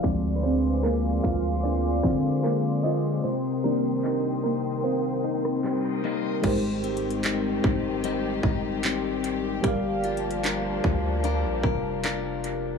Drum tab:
CC |------------------------------------------------|------------------------------------------------|x-----------------------------------------------|------------------------------------------------|
HH |x-----x-x-x-x-----------x-----------x-----x-----|x-----x-x-x-x-----------x-----------x-----x-----|x-----x-x-x-x-----------x-----------x-----x-----|x-----x-x-x-x-----------x-----------x-----x-----|
CP |------------x-----------------------x-----------|------------x-----------------------x-----------|------------x-----------------------x-----------|------------x-----------------------x-----------|
SD |------------------------------------------------|---------------------------------r--------------|------------------------------------------------|------------------------------------------------|
BD |o-----------------o-----------o-----------------|------------------------------------------------|o-----------------o-----------o-----------------|o-----------------o-----------o-----------------|